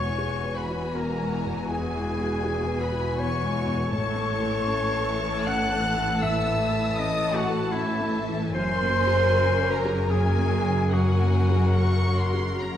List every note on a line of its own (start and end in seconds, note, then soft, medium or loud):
0.00 3.90 E1 medium
0.00 1.65 E2 soft
0.00 3.89 E2 medium
0.00 3.89 E3 soft
0.00 1.21 G#3 soft
0.00 0.33 F#4 soft
0.00 3.89 F#4 soft
0.00 0.58 C#5 medium
0.00 3.90 G#5 medium
0.00 0.53 C#6 medium
0.18 0.59 G#4 soft
0.43 0.84 B4 soft
0.56 0.96 B4 medium
0.56 0.94 B5 medium
0.70 1.10 F#4 soft
0.94 1.35 B3 soft
0.94 1.44 A#4 medium
0.94 1.70 A#5 medium
1.21 1.60 G#3 soft
1.46 1.85 B2 soft
1.70 3.90 E2 soft
1.70 2.83 G#4 medium
1.70 2.79 G#5 medium
1.96 2.35 G#3 soft
2.20 2.59 F#4 soft
2.44 2.84 G#4 soft
2.67 3.08 B4 soft
2.81 3.20 B4 medium
2.81 3.19 B5 medium
2.92 3.33 F#4 soft
3.17 3.58 B3 soft
3.17 3.92 C#5 medium
3.17 3.92 C#6 medium
3.41 3.82 G#3 soft
3.66 3.92 B2 soft
3.91 8.50 A1 medium
3.91 6.17 A2 medium
3.91 8.50 A2 medium
3.91 8.50 E3 medium
3.91 8.50 A4 medium
3.91 5.49 C#5 medium
3.91 8.51 A5 medium
3.91 5.44 C#6 medium
4.15 4.56 A3 soft
4.40 4.82 A4 soft
4.66 5.09 C#4 soft
4.92 5.36 C#5 soft
5.19 5.62 A4 medium
5.46 5.87 C#4 soft
5.46 6.24 F#5 loud
5.46 6.22 F#6 medium
5.72 6.12 A3 soft
5.96 6.36 E3 soft
6.22 8.50 A2 medium
6.22 7.00 E5 medium
6.22 6.96 E6 medium
6.46 6.87 A3 soft
6.71 7.12 A4 soft
6.97 7.38 C#4 medium
6.97 7.36 D#5 medium
6.97 7.35 D#6 medium
7.23 7.63 C#5 soft
7.35 7.74 F#4 medium
7.35 7.73 F#5 medium
7.49 7.89 A4 soft
7.72 8.17 C#4 medium
7.72 8.25 E4 medium
7.72 8.55 E5 medium
8.00 8.44 A3 soft
8.28 8.55 E3 soft
8.53 12.77 F#1 medium
8.53 12.77 F#2 medium
8.53 10.89 F#2 medium
8.53 10.06 F#3 medium
8.53 10.06 A#4 medium
8.53 9.72 C5 loud
8.53 10.06 G#5 medium
8.53 9.69 C6 medium
8.82 9.22 A#3 soft
9.07 9.48 G#4 soft
9.32 9.74 A#4 medium
9.58 10.00 C#5 medium
9.71 10.12 A#4 medium
9.71 10.11 A#5 medium
9.85 10.27 G#4 soft
10.11 10.91 F#3 medium
10.11 10.54 C#4 soft
10.11 10.94 G#4 medium
10.11 10.91 A#4 medium
10.11 10.91 G#5 medium
10.11 10.93 G#5 medium
10.37 10.81 A#3 soft
10.64 11.10 C#3 soft
10.92 12.77 F#2 medium
10.92 12.77 F#3 medium
10.92 12.77 F#4 medium
10.92 12.77 A#4 medium
10.92 12.77 F#5 medium
10.92 11.68 G#5 medium
11.21 11.67 A#3 soft
11.50 11.95 G#4 soft
11.78 12.23 A#4 soft
11.78 12.17 C#6 medium
12.06 12.50 C#5 soft
12.20 12.61 C6 medium
12.34 12.77 G#4 soft
12.61 12.77 C#4 soft
12.61 12.77 A#5 medium